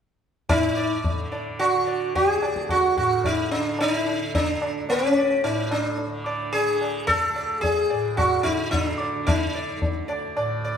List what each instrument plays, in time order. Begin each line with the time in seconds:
0.49 tanpura A2, sitar D#4, tabla na, tabla ge
0.76 sitar D5
1.04 tabla tin, tabla ge
1.11 tanpura D3
1.32 sitar D5, tabla na
1.59 sitar F#4, tabla na
1.74 tanpura D3
1.87 sitar D5
2.15 sitar G#4, tabla tin, tabla ge
2.36 tanpura D2
2.42 sitar D5, tabla na
2.56 tabla ke
2.69 sitar F#4, tabla na, tabla ge
2.96 tanpura A2, sitar F#4, tabla ge
3.24 sitar D#4, tabla tin, tabla ge
3.51 sitar D4
3.59 tanpura D3
3.79 sitar D4, tabla na
3.92 sitar D#4
4.07 tabla na
4.22 tanpura D3
4.35 sitar D4, tabla tin, tabla ge
4.62 tabla na
4.83 tanpura D2
4.89 sitar C#4, tabla na
5.17 sitar D5
5.44 tanpura A2, sitar D#4, tabla na
5.71 sitar D4, tabla na
5.98 tabla tin
6.07 tanpura D3
6.26 sitar D5, tabla na
6.52 sitar G#4, tabla tin
6.68 tanpura D3
6.81 tabla na
7.07 sitar A4, tabla tin, tabla ge
7.30 tanpura D2
7.35 sitar D5
7.61 sitar G#4, tabla tin, tabla ge
7.90 tanpura A2, sitar D5
8.17 sitar F#4, tabla na, tabla ge
8.43 sitar D#4, tabla ge
8.53 tanpura D3
8.71 sitar D#4, tabla tin, tabla ge
8.83 sitar D4
8.99 sitar D5
9.15 tanpura D3
9.27 sitar D#4, tabla na, tabla ge
9.55 sitar D5
9.77 tanpura D2
9.82 tabla tin, tabla ge
10.08 sitar D5, tabla na
10.37 tanpura A2, sitar D5, tabla na
10.65 sitar D5